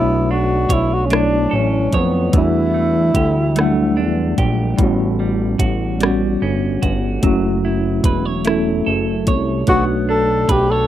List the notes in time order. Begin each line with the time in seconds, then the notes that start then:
Already playing: B1 F#3 A3 B3 D4 E4 C#5
0.31 D4 F#4
0.69 B1 E4 C#5, kick, closed hi-hat
0.93 F#4
1.05 F#3 C#4
1.10 A3 D4 C#5, cross-stick, closed hi-hat
1.15 E4
1.51 A1 C#4 A4
1.93 F2 B3 C#5, kick, closed hi-hat
2.31 E2 E3 G3 A3, kick, closed hi-hat
2.36 D4 E4 F#4
2.74 A3
3.14 D2 G4, kick, closed hi-hat
3.55 F#3 A3 D4, cross-stick, closed hi-hat
3.61 G3 F#5
3.97 E2 D4
4.38 A#1 G4, kick, closed hi-hat
4.77 A1 A2 G3 B3 C#4, kick, closed hi-hat
4.83 F#4
5.20 G3
5.59 A1 F#4, kick, closed hi-hat
5.99 G3 B3, closed hi-hat
6.03 C#4 F#4, cross-stick
6.42 G1 C#4
6.82 G1 F#4, kick, closed hi-hat
7.21 F#1 F#3 A3 C#4 E4, kick, closed hi-hat
7.26 F#4
7.65 E4
8.04 E1 B4, kick, closed hi-hat
8.25 C#5
8.45 A3 C#4 E4, cross-stick, closed hi-hat
8.49 E4 A4
8.86 F#1 A4
9.27 C2 C#5, kick, closed hi-hat
9.67 B1 A3 B3 D4 F#4 C#5, kick, closed hi-hat
9.73 F#4
10.09 D4 A4
10.49 B1 G4 B4, kick, closed hi-hat
10.70 A4 C#5